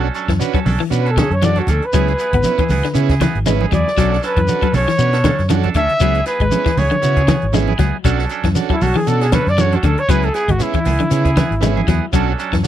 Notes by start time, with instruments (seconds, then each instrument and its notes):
0.03 clean electric guitar C#4 D4 A4
0.15 clean electric guitar F#3 C#4 D4 A4, closed hi-hat, shekere
0.29 fingered electric bass F#2, clean electric guitar E3, kick, snare, closed hi-hat
0.39 transistor combo organ C#4 D4 F#4 B4, closed hi-hat, shekere
0.54 clean electric guitar F#3 C#4 A4, muted fingered electric bass stroke, muted clean electric guitar stroke, kick, closed hi-hat
0.65 fingered electric bass B1, clean electric guitar F#3 C#4 D4 A4, open hi-hat, high conga, low conga, shekere
0.80 clean electric guitar E3
0.90 fingered electric bass B2, transistor combo organ C#4 D4 F#4 B4, closed hi-hat, shekere
1.01 trumpet B4
1.06 clean electric guitar C#4 D4 A4, closed hi-hat
1.10 trumpet A4
1.17 clean electric guitar D3 F#3 C#4 A4, trumpet G#4, muted clean electric guitar stroke, kick, snare, closed hi-hat, high conga, shekere
1.30 fingered electric bass F#2, trumpet C#5, closed hi-hat
1.41 clean electric guitar E3, transistor combo organ C#4 D4 F#4 A4, trumpet D5, closed hi-hat, high conga, shekere
1.56 clean electric guitar C#4 D4 A4, trumpet F#4, closed hi-hat, high conga
1.67 fingered electric bass D2, clean electric guitar F#3 C#4 D4 A4, trumpet A4, kick, closed hi-hat, high conga, low conga, shekere
1.82 trumpet B4, closed hi-hat
1.93 fingered electric bass C#2, clean electric guitar F#3 B3 E4 G#4, transistor combo organ B3 C#4 E4 G#4, kick, closed hi-hat, shekere
2.08 clean electric guitar E4 G#4, closed hi-hat
2.19 clean electric guitar B3 E4 G#4, closed hi-hat, shekere
2.33 fingered electric bass G#1, clean electric guitar B3, kick, closed hi-hat, low conga
2.43 transistor combo organ B3 C#4 E4 B4, closed hi-hat, high conga, shekere
2.58 clean electric guitar E3 E4 G#4, muted fingered electric bass stroke, kick, closed hi-hat
2.69 fingered electric bass C#2, clean electric guitar B3 E4 G#4, open hi-hat, high conga, low conga, shekere
2.84 clean electric guitar D3, snare, closed hi-hat
2.94 fingered electric bass C#3, transistor combo organ B3 C#4 E4 G#4, closed hi-hat, shekere
3.09 clean electric guitar E4 G#4, kick, snare, closed hi-hat
3.21 clean electric guitar E3 B3 E4 G#4, kick, snare, closed hi-hat, high conga, shekere
3.35 fingered electric bass G#1, closed hi-hat
3.46 clean electric guitar G#3, transistor combo organ B3 C#4 E4 B4, closed hi-hat, high conga, shekere
3.61 clean electric guitar E4 G#4, high conga
3.72 fingered electric bass E2, clean electric guitar F#3 E4 G#4, trumpet D5, muted clean electric guitar stroke, kick, closed hi-hat, low conga, shekere
3.87 snare
3.97 fingered electric bass B1, clean electric guitar F#3 C#4 D4 A4, transistor combo organ C#4 D4 F#4 A4, kick, snare, closed hi-hat, shekere
4.12 clean electric guitar C#4 D4 A4, snare
4.23 clean electric guitar F#3 C#4 D4 A4, trumpet B4, snare, closed hi-hat, shekere
4.37 fingered electric bass F#2, clean electric guitar E3, kick, closed hi-hat
4.47 transistor combo organ C#4 D4 F#4 A4, closed hi-hat, high conga, shekere
4.62 clean electric guitar F#3 C#4 D4 A4, muted fingered electric bass stroke, kick, closed hi-hat
4.73 fingered electric bass B1, clean electric guitar F#3 C#4 D4 A4, trumpet C#5, open hi-hat, high conga, low conga, shekere
4.88 clean electric guitar E3, snare
4.97 fingered electric bass B2, transistor combo organ C#4 D4 F#4 B4, closed hi-hat, shekere
5.13 clean electric guitar C#4 D4 A4, snare, closed hi-hat
5.24 clean electric guitar D3 F#3 C#4 D4 A4, kick, snare, closed hi-hat, high conga, shekere
5.38 fingered electric bass F#2, snare, closed hi-hat
5.48 clean electric guitar E3, transistor combo organ C#4 D4 F#4 A4, closed hi-hat, high conga, shekere
5.63 clean electric guitar D4 A4, closed hi-hat, high conga
5.74 fingered electric bass D2, clean electric guitar D3 F#3 C#4 D4 A4, trumpet E5, kick, closed hi-hat, low conga, shekere
5.89 closed hi-hat
6.00 fingered electric bass C#2, clean electric guitar F#3 B3 E4 G#4, transistor combo organ B3 C#4 E4 G#4, kick, closed hi-hat, shekere
6.15 clean electric guitar E4 G#4, closed hi-hat
6.26 clean electric guitar B3 E4 G#4, trumpet B4, snare, closed hi-hat, shekere
6.40 fingered electric bass G#1, clean electric guitar G#3, kick, closed hi-hat
6.51 transistor combo organ B3 C#4 E4 G#4, closed hi-hat, high conga, shekere
6.66 clean electric guitar E3 E4 G#4, muted fingered electric bass stroke, kick, snare, closed hi-hat
6.77 fingered electric bass C#2, clean electric guitar B3 E4 G#4, trumpet C#5, open hi-hat, high conga, low conga, shekere
6.91 clean electric guitar D3, closed hi-hat, high conga
7.01 fingered electric bass C#3, transistor combo organ B3 C#4 E4 F#4, closed hi-hat, shekere
7.17 clean electric guitar E4 G#4, kick, closed hi-hat
7.28 clean electric guitar E3 B3 G#4, muted clean electric guitar stroke, kick, snare, closed hi-hat, high conga, shekere
7.42 fingered electric bass G#1, closed hi-hat
7.53 clean electric guitar G#3, transistor combo organ B3 C#4 E4 G#4, snare, closed hi-hat, high conga, shekere
7.68 clean electric guitar E4 G#4, high conga
7.79 fingered electric bass C#2, clean electric guitar F#3 B3 E4 G#4, kick, snare, closed hi-hat, low conga, shekere
8.04 fingered electric bass B1, clean electric guitar F#3 C#4 D4 A4, transistor combo organ C#4 D4 F#4 A4, kick, closed hi-hat, shekere
8.18 clean electric guitar C#4 D4 A4, snare
8.29 clean electric guitar F#3 C#4 D4 A4, closed hi-hat, shekere
8.43 fingered electric bass F#2, clean electric guitar E3, kick, snare, closed hi-hat
8.55 transistor combo organ C#4 D4 F#4 A4, snare, closed hi-hat, high conga, shekere
8.69 clean electric guitar F#3 C#4 D4 A4, trumpet E4, muted fingered electric bass stroke, kick, closed hi-hat
8.81 fingered electric bass B1, clean electric guitar F#3 C#4 D4 A4, trumpet F#4, open hi-hat, high conga, low conga, shekere
8.96 clean electric guitar E3, trumpet G#4, high conga
9.07 fingered electric bass B2, transistor combo organ C#4 D4 F#4 A4, trumpet A4, closed hi-hat, shekere
9.21 clean electric guitar C#4 D4 A4, trumpet G#4, snare, closed hi-hat
9.32 clean electric guitar D3 F#3 C#4 D4 A4, trumpet B4, kick, snare, closed hi-hat, high conga, shekere
9.47 fingered electric bass F#2, trumpet D5, snare, closed hi-hat
9.58 clean electric guitar E3, transistor combo organ C#4 D4 F#4 A4, trumpet C#5, closed hi-hat, high conga, shekere
9.72 clean electric guitar C#4 D4 A4, trumpet F#4, closed hi-hat, high conga
9.83 fingered electric bass D2, clean electric guitar D3 F#3 C#4 D4 A4, trumpet A4, kick, closed hi-hat, high conga, low conga, shekere
9.98 trumpet C#5, closed hi-hat
10.08 fingered electric bass C#2, clean electric guitar F#3 B3 E4 G#4, transistor combo organ B3 C#4 E4 G#4, trumpet B4, kick, closed hi-hat, shekere
10.23 clean electric guitar E4 G#4, trumpet A4, closed hi-hat
10.34 clean electric guitar B3 E4 G#4, trumpet G#4, snare, closed hi-hat, shekere
10.48 fingered electric bass G#1, clean electric guitar G#3, trumpet F#4, kick, closed hi-hat, low conga
10.59 transistor combo organ B3 C#4 E4 G#4, trumpet E4, closed hi-hat, shekere
10.74 clean electric guitar E3 E4, muted fingered electric bass stroke, kick, closed hi-hat
10.85 fingered electric bass C#2, clean electric guitar B3 E4 G#4, open hi-hat, high conga, low conga, shekere
11.00 clean electric guitar D3, closed hi-hat, high conga
11.10 fingered electric bass C#3, transistor combo organ B3 C#4 E4 G#4, closed hi-hat, shekere
11.25 clean electric guitar E4 G#4, kick, closed hi-hat
11.37 clean electric guitar E3 B3 E4 G#4, kick, snare, closed hi-hat, high conga, shekere
11.51 fingered electric bass G#1, closed hi-hat
11.61 clean electric guitar G#3, transistor combo organ B3 C#4 E4 G#4, closed hi-hat, high conga, shekere
11.77 clean electric guitar E4 G#4, high conga
11.88 fingered electric bass E2, clean electric guitar F#3 B3 E4 G#4, kick, snare, closed hi-hat, low conga, shekere
12.12 fingered electric bass B1, clean electric guitar F#3 C#4 D4 A4, transistor combo organ C#4 D4 F#4 A4, kick, closed hi-hat, shekere
12.28 clean electric guitar C#4 D4 A4
12.39 clean electric guitar F#3 C#4 D4 A4, closed hi-hat, shekere
12.53 fingered electric bass F#2, clean electric guitar E3, kick, snare, closed hi-hat
12.63 transistor combo organ C#4 F#4